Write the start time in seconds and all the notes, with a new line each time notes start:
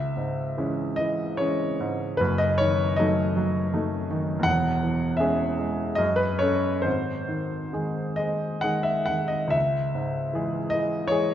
Already playing: C#2 E5
0.17 G#2
0.57 E3 G#3 C#4
0.96 E3 D#5
1.37 E3 G#3 C#4 C#5
1.80 G#2
2.17 F#1 F#2 B4
2.38 D#5
2.58 D#3 C#5
2.96 F#3 A3 D#4 D#5
3.37 F#3
3.73 F#3 A3 D#4
4.10 D#3
4.39 E2 F#5
4.45 E1
4.83 E3
5.17 G#3 C#4 G#4 E5
5.59 G#3
5.95 F#2 D#5
6.16 B4
6.39 C#4 A4 C#5
6.82 G#1 G#2 C5
7.28 D#3
7.73 D#3 G#3 G#4
8.16 G#3 D#5
8.61 D#3 G#3 G#4 F#5
8.83 E5
9.06 D#3 F#5
9.28 D#5
9.47 C#2 E5
9.95 G#2
10.33 E3 G#3 G#4
10.70 E3 D#5
11.07 E3 G#3 G#4 C#5